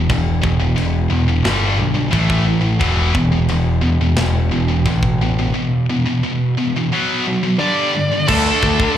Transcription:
0.09 0.42 E1 medium
0.09 0.40 E2 medium
0.09 0.40 B2 medium
0.09 kick loud
0.09 china medium
0.42 0.75 E1 medium
0.42 0.59 E2 medium
0.42 0.59 B2 medium
0.42 kick medium
0.60 0.75 E2 medium
0.60 0.75 B2 medium
0.76 1.09 E1 medium
0.76 1.07 E2 medium
0.76 1.07 B2 medium
0.76 china medium
1.10 1.44 E1 medium
1.10 1.27 E2 medium
1.10 1.27 B2 medium
1.28 1.44 E2 medium
1.28 1.45 B2 medium
1.44 1.77 G1 medium
1.44 1.77 G2 medium
1.44 1.77 D3 medium
1.44 1.77 G3 loud
1.44 snare loud
1.44 china medium
1.78 2.12 B1 medium
1.78 1.94 G2 medium
1.78 1.94 D3 medium
1.95 2.13 G2 medium
1.95 2.10 D3 medium
2.11 2.79 A1 medium
2.11 2.44 A2 loud
2.11 2.43 E3 medium
2.11 2.45 A3 loud
2.11 kick medium
2.11 china medium
2.30 kick medium
2.45 2.61 A2 medium
2.45 2.60 E3 medium
2.61 2.80 A2 medium
2.61 2.79 E3 medium
2.80 3.14 E1 loud
2.80 3.13 E2 medium
2.80 3.12 B2 loud
2.80 3.13 E3 medium
2.80 kick loud
2.80 china medium
3.13 3.48 E1 medium
3.13 3.31 E2 medium
3.13 3.31 B2 medium
3.13 kick medium
3.32 3.48 E2 medium
3.32 3.49 B2 medium
3.48 3.82 E1 medium
3.48 3.80 E2 medium
3.48 3.80 B2 medium
3.48 china medium
3.81 4.17 E1 medium
3.81 4.00 E2 medium
3.81 4.00 B2 medium
4.01 4.16 E2 medium
4.01 4.17 B2 medium
4.16 4.51 E1 medium
4.16 4.48 E2 medium
4.16 4.49 B2 medium
4.16 snare loud
4.16 china medium
4.51 4.85 E1 medium
4.51 4.68 E2 medium
4.51 4.67 B2 medium
4.68 4.85 E2 medium
4.68 4.86 B2 medium
4.85 5.52 A1 medium
4.85 5.17 E2 medium
4.85 5.18 B2 medium
4.85 kick medium
4.85 china medium
5.03 kick medium
5.22 5.38 E2 medium
5.22 5.38 B2 medium
5.39 5.53 E2 medium
5.39 5.53 B2 medium
5.54 5.85 E2 medium
5.54 5.85 B2 medium
5.90 6.05 E2 medium
5.90 6.05 B2 medium
6.06 6.22 E2 medium
6.06 6.22 B2 medium
6.23 6.54 E2 medium
6.23 6.54 B2 medium
6.58 6.75 E2 medium
6.58 6.74 B2 medium
6.77 6.92 E2 medium
6.77 6.91 B2 medium
6.93 7.24 B2 medium
6.93 7.24 F#3 loud
6.93 7.24 B3 medium
7.27 7.42 B2 medium
7.27 7.42 F#3 medium
7.43 7.59 B2 medium
7.43 7.60 F#3 medium
7.59 7.91 G2 medium
7.59 7.91 D3 medium
7.59 7.92 G3 loud
7.59 8.30 D5 loud
7.95 8.11 G2 medium
7.95 8.10 D3 medium
8.12 8.28 G2 medium
8.12 8.26 D3 medium
8.27 8.50 D2 medium
8.27 8.97 D3 medium
8.27 8.97 A3 medium
8.27 8.97 D4 loud
8.27 8.92 A4 medium
8.27 kick loud
8.27 crash loud
8.27 crash medium
8.63 8.84 D2 medium
8.63 kick medium
8.80 kick medium

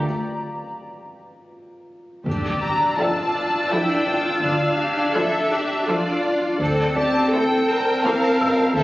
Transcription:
0.00 2.28 F4 soft
0.00 2.28 F5 soft
2.25 2.83 D2 soft
2.25 6.56 D4 soft
2.25 2.94 G4 soft
2.25 6.56 D5 soft
2.25 6.19 E6 soft
2.25 4.67 A6 soft
2.25 impact soft
2.62 2.96 A#5 soft
2.97 3.52 F3 soft
2.97 3.71 F4 soft
2.97 3.52 A4 soft
2.97 3.52 D5 soft
2.97 3.52 E5 soft
2.97 5.12 G5 soft
2.97 3.70 A5 soft
3.70 4.25 F3 soft
3.70 4.07 E4 soft
3.70 4.25 E4 soft
3.70 4.24 A4 soft
3.70 4.24 D5 soft
3.70 4.43 G5 soft
4.06 4.42 F4 soft
4.06 6.20 D5 soft
4.43 5.00 D2 soft
4.43 4.78 F4 soft
4.43 5.14 F5 soft
4.67 5.47 G#6 soft
4.78 5.14 G4 soft
5.15 5.70 F3 soft
5.15 5.70 E4 soft
5.15 5.69 A4 soft
5.15 5.50 A4 soft
5.15 5.69 D5 soft
5.15 5.88 E5 soft
5.51 5.87 G4 soft
5.87 6.42 F3 soft
5.87 6.60 F4 soft
5.87 6.41 A4 soft
5.87 6.60 D5 soft
5.87 6.41 D5 soft
5.87 6.42 E5 soft
6.60 7.17 D2 soft
6.60 8.83 C4 soft
6.60 6.95 A4 soft
6.60 8.83 C5 soft
6.60 8.83 A5 soft
6.95 7.32 G4 soft
6.95 8.83 D5 soft
6.95 7.30 A5 soft
7.32 7.87 A3 soft
7.32 7.87 E4 soft
7.32 7.68 A4 soft
7.32 7.86 A4 soft
7.32 7.86 C5 soft
7.32 8.05 G5 medium
7.68 8.77 A#4 soft
8.05 8.59 E3 soft
8.05 8.59 C4 soft
8.05 8.59 A4 soft
8.05 8.58 C5 soft
8.05 8.77 F5 medium
8.41 8.83 E6 soft
8.77 8.83 D2 medium
8.77 8.83 A4 soft
8.77 8.83 E5 medium

